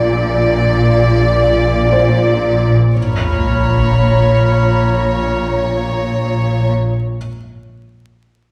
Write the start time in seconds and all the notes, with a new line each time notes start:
Already playing: A#1 A#2 D5
1.92 C5
2.96 A#1 A#2 C#5 A#5 B5 F6, sub drop
5.29 A#5